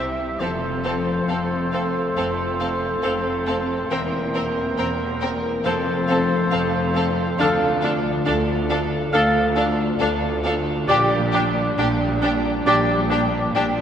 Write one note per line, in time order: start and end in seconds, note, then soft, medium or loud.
0.00 0.30 C2 medium
0.00 0.30 C3 soft
0.00 0.44 C3 soft
0.00 0.37 G3 soft
0.00 0.37 E4 soft
0.00 0.43 E4 soft
0.00 0.12 G4 soft
0.00 0.43 G4 soft
0.00 1.57 C5 soft
0.00 0.41 E5 soft
0.10 0.43 G3 soft
0.39 1.18 F1 medium
0.39 1.18 F2 medium
0.39 3.93 F3 medium
0.39 3.74 A3 medium
0.39 5.64 C4 medium
0.39 0.48 C4 soft
0.39 3.86 A4 soft
0.39 0.49 A4 soft
0.39 5.40 C5 soft
0.39 0.47 F5 soft
0.69 1.86 F4 soft
0.84 0.92 C4 soft
0.84 0.92 A4 soft
0.84 0.92 F5 soft
0.98 2.73 A4 soft
1.28 2.07 F1 soft
1.28 2.06 F2 medium
1.28 1.37 C4 soft
1.28 1.37 A4 soft
1.28 3.02 F5 soft
1.28 1.36 F5 soft
1.58 3.31 C5 soft
1.72 1.81 C4 soft
1.72 1.82 A4 soft
1.72 1.80 F5 soft
1.87 2.44 F4 soft
2.16 2.93 F1 medium
2.16 2.93 F2 medium
2.16 3.94 A3 soft
2.16 2.25 C4 soft
2.16 2.24 A4 soft
2.16 2.25 F5 soft
2.45 3.60 F4 soft
2.60 2.68 C4 soft
2.60 2.68 A4 soft
2.60 2.68 F5 soft
2.74 3.94 A4 soft
3.03 3.80 F1 medium
3.03 3.80 F2 medium
3.03 3.12 C4 soft
3.03 3.11 A4 soft
3.03 3.94 F5 soft
3.03 3.11 F5 medium
3.32 4.47 C5 soft
3.46 3.55 C4 soft
3.46 3.54 A4 soft
3.46 3.55 F5 soft
3.61 3.94 F4 soft
3.90 4.68 E1 medium
3.90 4.67 E2 medium
3.90 5.68 E3 medium
3.90 5.62 A#3 medium
3.90 3.99 C4 medium
3.90 3.99 A#4 soft
3.90 5.67 A#4 medium
3.90 3.99 G5 medium
4.19 5.34 A#3 soft
4.34 4.43 C4 soft
4.34 4.43 A#4 soft
4.34 4.42 G5 soft
4.49 6.79 C5 soft
4.77 5.55 E1 medium
4.77 5.54 E2 medium
4.77 4.86 C4 soft
4.77 5.68 A#4 medium
4.77 4.86 A#4 soft
4.77 4.86 G5 medium
5.06 5.68 G4 soft
5.21 5.30 C4 soft
5.21 5.29 A#4 medium
5.21 5.29 G5 soft
5.35 5.68 A#3 soft
5.64 6.42 F1 medium
5.64 6.42 F2 medium
5.64 9.55 F3 medium
5.64 10.89 A3 medium
5.64 7.36 C4 medium
5.64 5.74 C4 medium
5.64 5.73 A4 medium
5.64 7.40 A4 medium
5.64 7.36 C5 medium
5.64 5.72 F5 medium
5.94 7.09 F4 soft
6.07 6.17 C4 medium
6.07 6.17 A4 medium
6.07 6.15 F5 medium
6.23 8.25 A4 medium
6.51 7.29 F1 medium
6.51 7.29 F2 medium
6.51 6.59 C4 medium
6.51 6.60 A4 medium
6.51 6.59 F5 medium
6.51 10.42 F5 medium
6.81 7.43 C5 soft
6.95 7.03 C4 medium
6.95 7.04 A4 medium
6.95 7.03 F5 medium
7.10 8.54 F4 soft
7.38 8.16 D2 medium
7.38 10.92 D3 medium
7.38 7.48 D4 medium
7.38 10.85 F4 medium
7.38 7.48 A4 medium
7.38 7.73 A4 medium
7.38 7.46 F5 medium
7.38 7.72 F5 medium
7.69 8.83 A3 medium
7.82 7.91 D4 medium
7.82 7.91 A4 medium
7.82 7.90 F5 medium
7.97 9.70 D5 medium
8.25 9.03 D2 medium
8.25 8.34 D4 medium
8.25 9.99 A4 medium
8.25 8.34 A4 medium
8.25 8.33 F5 medium
8.55 10.29 F4 medium
8.69 8.78 D4 medium
8.69 8.78 A4 medium
8.69 8.77 F5 medium
8.84 9.41 A3 medium
9.13 9.90 D2 medium
9.13 13.03 D4 medium
9.13 9.21 D4 medium
9.13 9.21 A4 medium
9.13 9.46 A4 medium
9.13 9.45 F5 medium
9.13 9.21 F5 medium
9.42 10.58 A3 medium
9.56 9.64 D4 medium
9.56 9.64 A4 medium
9.56 9.64 F5 medium
9.71 11.47 D5 medium
9.99 10.78 D2 medium
9.99 10.08 D4 medium
9.99 10.07 A4 medium
9.99 10.92 A4 medium
9.99 10.08 F5 medium
10.30 10.92 F4 medium
10.44 10.53 D4 medium
10.44 10.52 A4 medium
10.44 10.53 F5 medium
10.60 10.93 A3 medium
10.88 11.68 A#1 medium
10.88 11.68 A#2 medium
10.88 12.65 A#2 medium
10.88 13.81 G3 medium
10.88 10.96 D4 medium
10.88 13.81 D4 medium
10.88 11.22 G4 medium
10.88 10.97 G4 medium
10.88 11.22 D5 medium
10.88 10.96 G5 medium
11.19 12.06 G3 medium
11.32 11.42 D4 medium
11.32 11.40 G4 medium
11.32 11.42 G5 medium
11.48 13.24 D5 medium
11.78 12.56 A#1 medium
11.78 12.55 A#2 medium
11.78 11.86 D4 medium
11.78 13.54 G4 medium
11.78 11.86 G4 medium
11.78 11.86 G5 medium
12.08 12.95 G3 medium
12.22 12.30 D4 medium
12.22 12.31 G4 medium
12.22 12.30 G5 medium
12.37 13.81 A#3 medium
12.66 13.44 A#1 medium
12.66 13.44 A#2 medium
12.66 13.81 A#2 medium
12.66 12.74 D4 medium
12.66 12.75 G4 medium
12.66 13.00 G4 medium
12.66 12.99 D5 medium
12.66 12.74 G5 medium
12.96 13.81 G3 medium
13.10 13.18 D4 medium
13.10 13.19 G4 medium
13.10 13.19 G5 medium
13.25 13.81 D5 medium
13.55 13.81 A#1 medium
13.55 13.81 A#2 medium
13.55 13.63 D4 medium
13.55 13.63 G4 medium
13.55 13.81 G4 medium
13.55 13.64 G5 medium